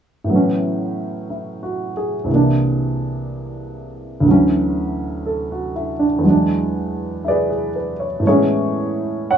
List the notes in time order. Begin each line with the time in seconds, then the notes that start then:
0.24 A2 E3
0.30 F#3 B3
0.36 C#4
1.30 E4
1.63 F#4
1.97 G#4
2.24 C2 C3
2.29 E3 A#3
2.35 D4
4.20 D2 D3
4.26 E3 F#3
4.31 C#4
5.26 A4
5.52 F#4
5.76 E4
5.99 D4
6.18 E2 E3
6.23 F#3 G#3
6.30 D4
7.24 E4 D5
7.29 G#4 B4
7.50 G#4
7.76 B4
8.00 C#5
8.20 A2 E3
8.26 G#3 B3 E4 G#4 C#5
8.31 C#4
9.31 C#5 F#5